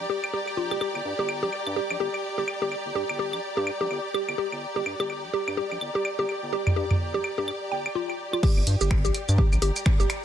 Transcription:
0.00 8.42 G4 medium
0.00 8.42 D5 medium
0.00 8.43 D5 medium
0.00 8.43 A#5 medium
0.10 0.15 G4 medium
0.24 claves medium
0.34 0.39 G4 medium
0.48 claves soft
0.57 0.73 A#1 medium
0.57 0.63 F4 medium
0.71 0.77 F1 medium
0.71 0.75 G4 medium
0.71 claves medium
0.81 0.89 G4 medium
0.81 claves medium
0.95 1.01 G1 medium
0.95 claves soft
1.05 1.14 G2 medium
1.19 1.44 G1 medium
1.19 1.25 G4 loud
1.29 claves medium
1.43 1.49 A#1 medium
1.43 1.48 G4 loud
1.53 claves soft
1.67 1.80 G2 loud
1.67 claves medium
1.76 1.84 G4 medium
1.90 1.96 A#1 medium
1.90 claves medium
2.00 2.09 G1 loud
2.00 2.08 G4 loud
2.14 claves soft
2.38 2.44 G1 medium
2.38 2.44 G4 loud
2.48 claves medium
2.62 2.75 G1 medium
2.62 2.67 G4 loud
2.72 claves soft
2.86 2.92 G1 medium
2.95 3.04 G2 medium
2.95 3.03 G4 loud
3.09 3.35 G1 medium
3.09 claves medium
3.19 3.27 G4 loud
3.33 3.39 A#1 medium
3.33 claves medium
3.57 3.70 G2 loud
3.57 3.63 G4 loud
3.67 claves medium
3.81 3.87 A#1 medium
3.81 3.86 G4 medium
3.91 3.99 G1 loud
3.91 claves soft
4.14 4.22 G4 loud
4.14 claves medium
4.28 4.35 G1 medium
4.28 claves medium
4.38 4.46 G4 loud
4.52 4.66 G1 medium
4.52 claves soft
4.76 4.82 G1 medium
4.76 4.82 G4 medium
4.86 4.95 G2 medium
4.86 claves medium
5.00 5.25 G1 medium
5.00 5.06 G4 medium
5.00 claves medium
5.10 claves soft
5.24 5.30 A#1 medium
5.34 5.42 G4 loud
5.48 5.61 G2 medium
5.48 claves medium
5.57 5.65 G4 loud
5.71 5.77 A#1 loud
5.71 claves soft
5.81 5.90 G1 loud
5.81 claves medium
5.95 6.01 G4 loud
6.05 claves medium
6.19 6.25 G1 medium
6.19 6.25 G4 loud
6.29 claves soft
6.43 6.56 G1 medium
6.53 6.61 G4 loud
6.67 6.73 G1 medium
6.67 mid tom medium
6.67 claves medium
6.76 6.85 G2 medium
6.76 6.84 G4 loud
6.91 7.16 G1 medium
6.91 mid tom medium
6.91 claves soft
7.14 7.20 A#1 medium
7.14 7.20 G4 loud
7.24 claves medium
7.38 7.51 G2 loud
7.38 7.44 G4 loud
7.48 claves medium
7.72 7.88 G1 medium
7.72 7.77 G5 medium
7.86 claves medium
7.95 8.01 F4 medium
8.10 claves soft
8.33 8.39 F4 medium
8.33 claves medium
8.43 10.24 G4 medium
8.43 8.51 G4 loud
8.43 10.24 D5 medium
8.43 kick loud
8.43 crash loud
8.43 claves medium
8.57 8.63 G1 loud
8.57 claves soft
8.67 8.76 G2 medium
8.67 open hi-hat medium
8.81 9.06 G1 medium
8.81 8.87 G4 loud
8.81 shaker medium
8.91 finger snap medium
8.91 kick loud
8.91 claves medium
9.05 9.11 A#1 medium
9.05 9.10 G4 loud
9.05 10.24 D5 medium
9.05 open hi-hat soft
9.05 shaker soft
9.14 open hi-hat medium
9.14 claves soft
9.29 9.42 G2 loud
9.29 claves medium
9.29 shaker medium
9.33 10.24 A#5 medium
9.38 9.46 G4 loud
9.38 kick loud
9.52 9.58 A#1 loud
9.52 claves medium
9.52 shaker soft
9.62 9.71 G1 loud
9.62 9.70 G4 loud
9.62 open hi-hat medium
9.76 open hi-hat soft
9.76 claves soft
9.76 shaker medium
9.86 finger snap medium
9.86 kick loud
10.00 10.06 G1 medium
10.00 10.05 G4 loud
10.00 shaker soft
10.10 finger snap medium
10.10 open hi-hat medium
10.10 claves medium

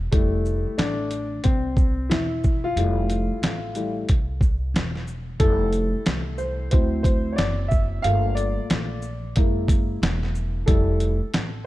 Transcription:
0.12 0.64 F1 medium
0.12 1.08 G3 medium
0.12 1.08 A3 medium
0.12 1.08 E4 medium
0.12 kick loud
0.12 closed hi-hat medium
0.45 shaker soft
0.67 muted upright bass stroke soft
0.78 1.41 A1 medium
0.78 1.40 D4 medium
0.78 snare medium
0.78 closed hi-hat medium
1.11 closed hi-hat medium
1.11 shaker soft
1.44 2.08 C2 medium
1.44 2.12 C4 medium
1.44 kick medium
1.44 closed hi-hat medium
1.77 kick medium
1.77 shaker soft
2.10 2.73 E1 medium
2.10 2.66 E4 medium
2.10 snare loud
2.10 closed hi-hat medium
2.44 kick medium
2.44 shaker soft
2.64 3.92 F4 loud
2.76 3.28 F1 medium
2.76 3.72 G3 medium
2.76 3.72 A3 soft
2.76 3.72 E4 medium
2.76 closed hi-hat medium
3.10 closed hi-hat soft
3.10 shaker soft
3.30 muted upright bass stroke soft
3.42 4.05 A1 medium
3.42 snare loud
3.42 closed hi-hat medium
3.75 4.05 G3 soft
3.75 4.05 A3 soft
3.75 4.06 E4 soft
3.75 closed hi-hat soft
3.75 shaker soft
4.09 4.72 C2 medium
4.09 kick medium
4.09 closed hi-hat medium
4.41 kick medium
4.41 shaker medium
4.74 5.37 E1 medium
4.74 snare loud
4.74 closed hi-hat medium
4.96 snare soft
5.08 shaker soft
5.40 5.91 F1 medium
5.40 6.68 G3 medium
5.40 6.68 A3 medium
5.40 6.69 E4 medium
5.40 6.02 A4 loud
5.40 kick loud
5.40 closed hi-hat medium
5.73 closed hi-hat soft
5.73 shaker medium
5.94 muted upright bass stroke soft
6.06 6.69 C2 medium
6.06 snare loud
6.06 closed hi-hat medium
6.38 6.70 C5 medium
6.38 shaker soft
6.71 7.35 D2 loud
6.71 8.00 F#3 soft
6.71 8.00 C4 soft
6.71 8.01 E4 medium
6.71 7.02 C5 medium
6.71 kick medium
6.71 closed hi-hat medium
7.03 7.33 C5 medium
7.03 kick medium
7.03 closed hi-hat medium
7.03 shaker medium
7.32 7.38 C#5 medium
7.32 7.68 D5 medium
7.38 8.01 F#1 medium
7.38 snare loud
7.38 closed hi-hat medium
7.68 8.04 E5 medium
7.68 kick medium
7.68 shaker soft
8.02 8.55 G1 medium
8.02 8.99 A3 medium
8.02 8.99 A#3 medium
8.02 9.00 F4 medium
8.02 8.34 F5 loud
8.02 closed hi-hat medium
8.35 9.31 D5 medium
8.35 closed hi-hat soft
8.35 shaker medium
8.58 muted upright bass stroke soft
8.70 9.33 A#1 medium
8.70 snare loud
8.70 closed hi-hat medium
9.02 shaker soft
9.36 9.99 F#1 medium
9.36 10.64 G#3 medium
9.36 10.64 A#3 medium
9.36 10.64 E4 medium
9.36 kick medium
9.36 closed hi-hat medium
9.68 kick medium
9.68 closed hi-hat medium
9.68 shaker medium
10.02 10.64 E1 medium
10.02 snare loud
10.02 closed hi-hat medium
10.23 snare soft
10.35 shaker soft
10.66 11.19 F1 medium
10.66 11.15 G3 medium
10.66 11.15 A3 medium
10.66 11.15 E4 medium
10.66 11.66 A4 medium
10.66 kick loud
10.66 closed hi-hat medium
11.00 closed hi-hat medium
11.00 shaker soft
11.22 muted upright bass stroke soft
11.34 11.66 A1 medium
11.34 snare loud
11.34 closed hi-hat medium

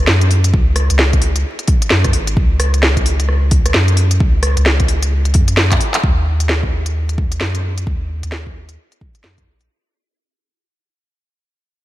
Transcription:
0.07 0.52 F#2 medium
0.07 snare loud
0.21 closed hi-hat soft
0.31 open hi-hat medium
0.44 closed hi-hat medium
0.54 0.89 C#2 loud
0.54 kick loud
0.76 cross-stick medium
0.76 open hi-hat medium
0.90 1.44 C#2 medium
0.90 closed hi-hat medium
0.99 snare loud
1.13 kick medium
1.13 closed hi-hat soft
1.22 open hi-hat medium
1.36 closed hi-hat medium
1.59 closed hi-hat soft
1.68 kick loud
1.68 open hi-hat medium
1.82 closed hi-hat medium
1.90 2.16 F#2 medium
1.90 snare loud
2.04 kick medium
2.04 cross-stick medium
2.04 closed hi-hat soft
2.13 2.36 G#1 loud
2.13 open hi-hat medium
2.27 closed hi-hat medium
2.37 3.73 C#2 loud
2.37 kick loud
2.60 cross-stick medium
2.60 open hi-hat medium
2.74 closed hi-hat medium
2.83 snare loud
2.97 kick medium
2.97 closed hi-hat soft
3.06 open hi-hat medium
3.20 closed hi-hat medium
3.29 cross-stick soft
3.51 kick loud
3.51 open hi-hat medium
3.66 cross-stick medium
3.66 closed hi-hat medium
3.74 4.19 F#2 medium
3.74 snare loud
3.88 closed hi-hat soft
3.97 open hi-hat medium
4.11 closed hi-hat medium
4.20 4.55 C#2 loud
4.20 kick loud
4.43 cross-stick medium
4.43 open hi-hat medium
4.57 5.36 C#2 medium
4.57 closed hi-hat medium
4.66 snare loud
4.80 kick medium
4.80 closed hi-hat soft
4.88 open hi-hat medium
5.03 closed hi-hat medium
5.25 closed hi-hat soft
5.34 5.79 F#2 medium
5.34 kick loud
5.34 open hi-hat medium
5.48 closed hi-hat medium
5.57 snare loud
5.72 kick medium
5.72 clap medium
5.72 closed hi-hat soft
5.81 open hi-hat medium
5.94 clap loud
5.94 closed hi-hat medium
6.04 7.40 D#2 loud
6.04 kick loud
6.40 closed hi-hat medium
6.49 snare loud
6.63 kick medium
6.86 closed hi-hat medium
7.09 closed hi-hat soft
7.18 kick medium
7.32 closed hi-hat medium
7.41 7.85 F#2 medium
7.41 snare medium
7.55 closed hi-hat soft
7.78 closed hi-hat medium
7.87 8.22 D#2 loud
7.87 kick loud
8.23 8.77 D#2 medium
8.23 closed hi-hat medium
8.32 snare loud
8.47 kick medium
8.69 closed hi-hat medium
8.92 closed hi-hat soft
9.01 kick loud
9.15 closed hi-hat medium
9.24 9.48 F#2 medium
9.24 snare loud
9.38 kick medium
9.38 closed hi-hat soft
9.46 9.68 A#1 medium
9.61 closed hi-hat medium

